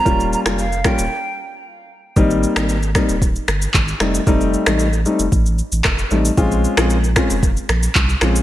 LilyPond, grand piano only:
\new Staff \with { instrumentName = "Grand piano" } { \time 4/4 \key aes \major \tempo 4 = 114 <g bes des' f'>8. <g bes des' f'>16 r8 <g bes des' f'>16 r2 r16 | <g bes c' ees'>8. <g bes c' ees'>16 r8 <g bes c' ees'>16 r4. r16 <g a c' ees'>16 r16 | <g a c' ees'>8. <g a c' ees'>16 r8 <g a c' ees'>16 r4. r16 <g a c' ees'>16 r16 | <aes c' des' f'>8. <aes c' des' f'>16 r8 <aes c' des' f'>16 r4. r16 <aes c' des' f'>16 r16 | }